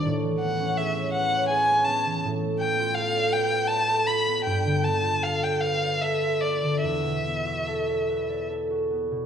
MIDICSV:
0, 0, Header, 1, 3, 480
1, 0, Start_track
1, 0, Tempo, 734394
1, 33, Time_signature, 3, 2, 24, 8
1, 2913, Tempo, 779221
1, 3873, Tempo, 823045
1, 5765, End_track
2, 0, Start_track
2, 0, Title_t, "Violin"
2, 0, Program_c, 0, 40
2, 264, Note_on_c, 0, 78, 63
2, 506, Note_on_c, 0, 76, 58
2, 515, Note_off_c, 0, 78, 0
2, 730, Note_off_c, 0, 76, 0
2, 734, Note_on_c, 0, 78, 67
2, 969, Note_off_c, 0, 78, 0
2, 973, Note_on_c, 0, 80, 72
2, 1208, Note_on_c, 0, 81, 65
2, 1218, Note_off_c, 0, 80, 0
2, 1456, Note_off_c, 0, 81, 0
2, 1697, Note_on_c, 0, 79, 63
2, 1926, Note_on_c, 0, 77, 65
2, 1936, Note_off_c, 0, 79, 0
2, 2175, Note_on_c, 0, 79, 69
2, 2185, Note_off_c, 0, 77, 0
2, 2406, Note_on_c, 0, 81, 78
2, 2416, Note_off_c, 0, 79, 0
2, 2657, Note_on_c, 0, 83, 69
2, 2667, Note_off_c, 0, 81, 0
2, 2902, Note_off_c, 0, 83, 0
2, 2906, Note_on_c, 0, 79, 61
2, 3149, Note_on_c, 0, 81, 65
2, 3158, Note_off_c, 0, 79, 0
2, 3391, Note_on_c, 0, 77, 60
2, 3400, Note_off_c, 0, 81, 0
2, 3515, Note_on_c, 0, 79, 56
2, 3524, Note_off_c, 0, 77, 0
2, 3620, Note_on_c, 0, 77, 61
2, 3629, Note_off_c, 0, 79, 0
2, 3871, Note_on_c, 0, 76, 58
2, 3880, Note_off_c, 0, 77, 0
2, 4102, Note_on_c, 0, 74, 50
2, 4111, Note_off_c, 0, 76, 0
2, 4341, Note_off_c, 0, 74, 0
2, 4345, Note_on_c, 0, 76, 54
2, 5300, Note_off_c, 0, 76, 0
2, 5765, End_track
3, 0, Start_track
3, 0, Title_t, "Harp"
3, 0, Program_c, 1, 46
3, 34, Note_on_c, 1, 45, 57
3, 148, Note_on_c, 1, 52, 36
3, 270, Note_on_c, 1, 59, 43
3, 389, Note_on_c, 1, 61, 42
3, 515, Note_on_c, 1, 68, 43
3, 631, Note_on_c, 1, 73, 44
3, 750, Note_on_c, 1, 71, 46
3, 859, Note_off_c, 1, 73, 0
3, 866, Note_on_c, 1, 73, 48
3, 976, Note_off_c, 1, 68, 0
3, 983, Note_on_c, 1, 68, 48
3, 1093, Note_off_c, 1, 61, 0
3, 1101, Note_on_c, 1, 61, 43
3, 1213, Note_off_c, 1, 59, 0
3, 1221, Note_on_c, 1, 59, 44
3, 1337, Note_off_c, 1, 52, 0
3, 1345, Note_on_c, 1, 52, 42
3, 1458, Note_off_c, 1, 45, 0
3, 1466, Note_on_c, 1, 45, 57
3, 1481, Note_off_c, 1, 61, 0
3, 1482, Note_off_c, 1, 68, 0
3, 1482, Note_off_c, 1, 73, 0
3, 1483, Note_off_c, 1, 52, 0
3, 1582, Note_on_c, 1, 57, 35
3, 1697, Note_off_c, 1, 59, 0
3, 1705, Note_on_c, 1, 59, 40
3, 1825, Note_on_c, 1, 65, 42
3, 1943, Note_on_c, 1, 69, 42
3, 2055, Note_on_c, 1, 74, 43
3, 2172, Note_off_c, 1, 71, 0
3, 2180, Note_on_c, 1, 71, 41
3, 2298, Note_on_c, 1, 77, 47
3, 2408, Note_off_c, 1, 74, 0
3, 2416, Note_on_c, 1, 74, 43
3, 2529, Note_off_c, 1, 69, 0
3, 2536, Note_on_c, 1, 69, 39
3, 2654, Note_off_c, 1, 65, 0
3, 2662, Note_on_c, 1, 65, 41
3, 2777, Note_off_c, 1, 59, 0
3, 2784, Note_on_c, 1, 59, 39
3, 2914, Note_on_c, 1, 43, 53
3, 2936, Note_off_c, 1, 45, 0
3, 3034, Note_on_c, 1, 50, 34
3, 3145, Note_off_c, 1, 59, 0
3, 3152, Note_on_c, 1, 59, 37
3, 3255, Note_off_c, 1, 65, 0
3, 3262, Note_on_c, 1, 65, 37
3, 3376, Note_off_c, 1, 69, 0
3, 3383, Note_on_c, 1, 69, 40
3, 3497, Note_off_c, 1, 74, 0
3, 3505, Note_on_c, 1, 74, 38
3, 3620, Note_off_c, 1, 71, 0
3, 3627, Note_on_c, 1, 71, 40
3, 3741, Note_off_c, 1, 74, 0
3, 3748, Note_on_c, 1, 74, 40
3, 3868, Note_off_c, 1, 69, 0
3, 3876, Note_on_c, 1, 69, 37
3, 3983, Note_off_c, 1, 65, 0
3, 3990, Note_on_c, 1, 65, 35
3, 4051, Note_off_c, 1, 57, 0
3, 4099, Note_off_c, 1, 59, 0
3, 4106, Note_on_c, 1, 59, 33
3, 4223, Note_off_c, 1, 50, 0
3, 4230, Note_on_c, 1, 50, 35
3, 4349, Note_on_c, 1, 40, 47
3, 4368, Note_off_c, 1, 43, 0
3, 4368, Note_off_c, 1, 65, 0
3, 4368, Note_off_c, 1, 77, 0
3, 4370, Note_off_c, 1, 50, 0
3, 4471, Note_on_c, 1, 47, 27
3, 4586, Note_off_c, 1, 59, 0
3, 4593, Note_on_c, 1, 59, 32
3, 4711, Note_on_c, 1, 66, 32
3, 4832, Note_off_c, 1, 69, 0
3, 4839, Note_on_c, 1, 69, 36
3, 4958, Note_off_c, 1, 74, 0
3, 4965, Note_on_c, 1, 74, 32
3, 5074, Note_off_c, 1, 71, 0
3, 5081, Note_on_c, 1, 71, 33
3, 5195, Note_off_c, 1, 74, 0
3, 5202, Note_on_c, 1, 74, 35
3, 5315, Note_off_c, 1, 69, 0
3, 5322, Note_on_c, 1, 69, 34
3, 5432, Note_off_c, 1, 66, 0
3, 5439, Note_on_c, 1, 66, 32
3, 5552, Note_off_c, 1, 59, 0
3, 5559, Note_on_c, 1, 59, 34
3, 5674, Note_off_c, 1, 47, 0
3, 5681, Note_on_c, 1, 47, 35
3, 5765, Note_off_c, 1, 40, 0
3, 5765, Note_off_c, 1, 47, 0
3, 5765, Note_off_c, 1, 59, 0
3, 5765, Note_off_c, 1, 66, 0
3, 5765, Note_off_c, 1, 69, 0
3, 5765, Note_off_c, 1, 71, 0
3, 5765, Note_off_c, 1, 74, 0
3, 5765, End_track
0, 0, End_of_file